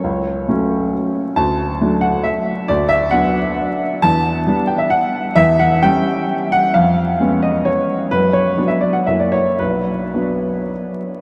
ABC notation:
X:1
M:3/4
L:1/16
Q:1/4=132
K:Bm
V:1 name="Upright piano"
c8 z4 | a6 f2 e4 | d2 e2 f8 | a6 g e f4 |
e2 f2 g6 f2 | ^e6 ^d2 c4 | B2 c3 e d f e d c2 | B12 |]
V:2 name="Upright piano" clef=bass
C,,4 [F,A,C]8 | D,,4 [F,A,D]8 | D,,4 [F,B,D]8 | E,,4 [G,B,D]8 |
E,,4 [G,C]8 | ^E,,4 [^G,B,C]8 | F,,4 [F,B,D]4 [F,,F,^A,E]4 | B,,,4 [F,B,D]8 |]